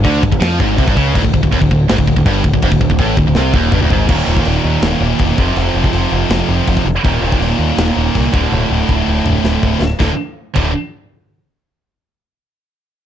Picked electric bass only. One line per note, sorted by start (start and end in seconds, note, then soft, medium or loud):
0.05 0.22 D2 loud
0.23 0.32 G1 medium
0.32 0.41 G1 medium
0.41 0.58 F2 medium
0.60 0.77 G#1 loud
0.78 0.87 C2 loud
0.88 0.96 G1 loud
0.97 1.14 C#2 loud
1.15 1.24 D1 loud
1.24 1.33 D1 medium
1.34 1.42 D1 medium
1.43 1.51 D1 medium
1.52 1.61 D#1 medium
1.61 1.70 D1 medium
1.71 1.88 D1 medium
1.90 1.98 G#1 medium
1.98 2.07 D1 medium
2.07 2.16 D1 medium
2.17 2.25 D1 medium
2.26 2.43 G1 loud
2.44 2.52 D1 medium
2.53 2.62 D1 medium
2.63 2.71 F1 loud
2.72 2.80 D1 medium
2.81 2.89 D1 medium
2.90 2.98 D1 medium
2.99 3.16 A1 medium
3.17 3.26 D1 medium
3.27 3.35 D1 medium
3.36 3.53 C2 medium
3.54 3.71 D#1 loud
3.72 3.80 G1 loud
3.81 3.90 D1 loud
3.90 4.08 G#1 loud
4.09 4.20 D#1 loud
4.27 4.39 D#1 medium
4.46 4.57 D#1 medium
4.64 4.76 D#2 medium
4.82 4.94 D#1 medium
5.01 5.12 D#1 medium
5.20 5.31 E1 medium
5.38 5.50 F1 medium
5.57 5.68 F1 loud
5.75 5.86 F1 medium
5.93 6.05 F1 medium
6.12 6.23 F1 medium
6.29 6.41 F1 medium
6.49 6.60 F1 medium
6.68 6.79 F1 medium
6.85 6.96 F1 medium
7.04 7.16 D#1 loud
7.22 7.34 D#1 medium
7.40 7.52 D#1 medium
7.59 7.70 D#2 medium
7.78 7.89 D#1 medium
7.97 8.08 D#1 medium
8.15 8.26 C2 medium
8.33 8.45 D1 medium
8.52 8.63 D1 loud
8.70 8.82 D1 medium
8.89 9.00 D1 medium
9.08 9.19 D1 medium
9.25 9.37 D1 medium
9.44 9.55 D1 medium
9.63 9.74 D1 medium
9.80 9.92 D1 medium
10.00 10.10 D1 medium
10.56 10.73 D1 medium